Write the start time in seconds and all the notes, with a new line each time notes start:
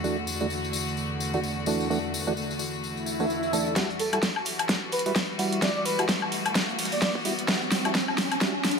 Already playing: E2 D3 A3 F#4
0.04 E3 A3 D4 F#4, tambourine
0.27 tambourine
0.41 E3 A3 D4 F#4, tambourine
0.50 tambourine
0.64 tambourine
0.73 tambourine
0.88 tambourine
0.97 tambourine
1.20 tambourine
1.33 E3 A3 D4 F#4, tambourine
1.43 tambourine
1.66 E3 A3 D4 F#4, tambourine
1.80 tambourine
1.90 E3 A3 D4 F#4, tambourine
2.14 tambourine
2.27 E3 A3 D4 F#4, tambourine
2.37 tambourine
2.51 tambourine
2.59 tambourine
2.73 tambourine
2.83 tambourine, swell
2.97 tambourine
3.06 tambourine
3.20 E3 A3 D4 F#4, tambourine
3.30 tambourine
3.43 tambourine
3.53 E3 A3 D4 A4, tambourine
3.66 tambourine
3.76 E3 G3 E4 F#4, kick, snare, closed hi-hat, tambourine, riser
3.90 closed hi-hat
3.99 A4, open hi-hat, tambourine
4.13 G3 E4 F#4 A4, closed hi-hat, high woodblock
4.22 kick, snare, closed hi-hat, tambourine
4.36 snare, high woodblock
4.45 open hi-hat, tambourine
4.59 closed hi-hat, high woodblock
4.69 kick, snare, closed hi-hat, tambourine
4.92 B4, open hi-hat, tambourine
4.99 closed hi-hat
5.06 G3 E4 F#4 B4, snare, open hi-hat
5.15 kick, snare, closed hi-hat, tambourine
5.30 snare
5.39 G3 E4 F#4, open hi-hat, tambourine
5.52 closed hi-hat
5.62 G3 E4 F#4 D5, kick, snare, closed hi-hat, tambourine
5.76 D5, snare
5.86 B4, open hi-hat, tambourine
5.99 G3 E4 F#4, closed hi-hat, high woodblock
6.08 kick, snare, closed hi-hat, tambourine
6.22 high woodblock
6.32 open hi-hat, tambourine
6.46 closed hi-hat, high woodblock
6.55 kick, snare, closed hi-hat, tambourine
6.69 closed hi-hat
6.79 open hi-hat
6.85 closed hi-hat
6.92 D5, open hi-hat
7.02 D5, kick, snare, closed hi-hat, tambourine
7.15 kick, snare
7.25 G3 E4 F#4, open hi-hat, tambourine
7.39 closed hi-hat
7.48 G3 E4 F#4, kick, snare, closed hi-hat, tambourine
7.62 closed hi-hat
7.72 snare, open hi-hat, tambourine
7.85 G3 E4 F#4, closed hi-hat, high woodblock
7.94 kick, snare, closed hi-hat, tambourine
8.08 snare, high woodblock
8.18 snare, open hi-hat, tambourine
8.32 closed hi-hat, high woodblock
8.41 G3 E4 F#4, kick, snare, closed hi-hat, tambourine
8.64 snare, open hi-hat, tambourine
8.71 closed hi-hat